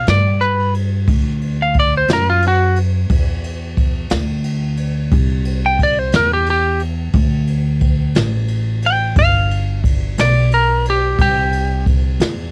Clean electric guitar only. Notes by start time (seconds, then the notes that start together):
0.10 D5
0.41 B4
1.62 F5
1.79 D5
1.97 C5
2.13 A#4
2.30 F4
2.48 F#4
5.66 G5
5.83 D5
5.99 C5
6.16 A#4
6.34 G4
6.50 G4
8.86 G5
9.19 F5
9.86 D5
10.20 D5
10.54 A#4
10.90 G4
11.21 G4